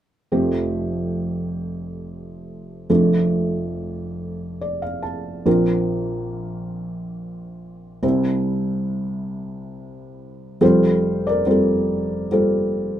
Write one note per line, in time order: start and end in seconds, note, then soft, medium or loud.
0.32 2.86 F1 soft
0.32 2.86 F2 soft
0.32 2.86 F3 soft
0.32 2.85 A3 soft
0.32 2.85 C4 soft
0.32 2.86 G4 medium
2.90 5.42 F1 soft
2.90 5.42 F2 soft
2.90 5.43 F3 medium
2.90 5.42 A3 soft
2.90 5.42 D4 soft
2.90 5.42 A4 medium
4.61 4.81 D5 soft
4.82 5.02 F5 soft
5.03 5.43 A5 soft
5.46 7.99 A#1 soft
5.46 7.99 A#2 medium
5.46 7.99 F3 medium
5.46 7.99 C4 soft
5.46 7.99 D4 soft
5.46 7.99 A#4 medium
8.03 10.57 C2 medium
8.03 10.57 C3 medium
8.03 10.57 G3 medium
8.03 10.57 C4 soft
8.03 10.57 E4 soft
8.03 10.57 C5 medium
10.61 13.00 F1 soft
10.61 13.00 F2 soft
10.61 11.42 G3 medium
10.61 11.42 C4 medium
10.61 11.42 F4 medium
10.61 10.64 A4 medium
10.61 11.28 C5 medium
10.65 11.23 A4 medium
11.27 11.47 A#4 soft
11.27 11.48 D5 medium
11.46 12.27 G3 soft
11.46 12.27 C4 soft
11.46 12.27 F4 soft
11.46 12.27 C5 medium
11.51 12.30 A4 medium
12.31 13.00 G3 medium
12.31 13.00 C4 soft
12.31 13.00 F4 soft
12.31 13.00 A4 medium
12.31 13.00 C5 medium